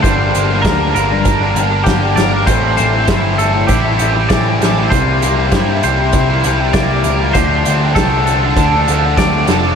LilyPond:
<<
  \new Staff \with { instrumentName = "Clean electric guitar" } { \time 4/4 \key d \minor \tempo 4 = 98 c''4 bes'8 bes'4. g'8 d''8 | c''8 c''4 a'8 g'4 d''4 | c''4. c''4. d''4 | c''4 a'8 a'4. d''4 | }
  \new Staff \with { instrumentName = "Distorted electric guitar" } { \time 4/4 \key d \minor g,8 bes8 d'8 g8 d'8 g8 bes8 bes'8 | a,8 c'8 e'8 g8 e'8 g8 c'8 a'8 | c8 bes8 e'8 g8 e'8 g8 bes8 bes'8 | d8 c'8 d'8 f8 d'8 f8 c'8 a'8 | }
  \new Staff \with { instrumentName = "Overdriven electric guitar" } { \time 4/4 \key d \minor <g, d g bes d'>8. <g bes d'>16 <g, d g bes d'>8 <d g bes d'>8. <g bes d'>16 <d g bes d'>8 <g, d g bes d'>16 <g bes d'>8 <g bes d'>16 | <a, e a c' e'>8. <a c' e'>16 <a, e a c' e'>8 <e a c' e'>8. <a c' e'>16 <e a c' e'>8 <a, e a c' e'>16 <a c' e'>8 <a c' e'>16 | <c g bes e'>8. <g bes e'>16 <c g bes e'>8 <c g bes e'>8. <g bes e'>16 <c g bes e'>8 <c g bes e'>16 <g bes e'>8 <g bes e'>16 | <d f a d'>8. <f a d'>16 <d f a d'>8 <d f a d'>8. <f a d'>16 <d f a d'>8 <d f a d'>16 <f a d'>8 <f a d'>16 | }
  \new Staff \with { instrumentName = "Picked electric bass" } { \clef bass \time 4/4 \key d \minor g,,8 g,,8 d,8 g,,8 g,,8 g,,8 g,,8 g,,8 | a,,8 a,,8 g,,4 a,,8 a,,8 a,,8 a,,8 | c,8 c,8 g,8 c,8 c,8 c,8 c,8 cis,8 | d,8 d,8 c,4 d,8 d,8 d,8 f,,8 | }
  \new DrumStaff \with { instrumentName = "Drums" } \drummode { \time 4/4 <hh bd>8 hh8 <hh bd sn>8 hh8 <hh bd>8 hh8 <hh bd sn>8 <hh sn>8 | <hh bd>8 hh8 <hh bd sn>8 hh8 <hh bd>8 hh8 <hh bd sn>8 <hh sn>8 | <hh bd>8 hh8 <hh bd sn>8 hh8 <hh bd>8 hh8 <hh bd sn>8 hh8 | <hh bd>8 hh8 <hh bd sn>8 hh8 <hh bd>8 hh8 <hh bd sn>8 <hh sn>8 | }
>>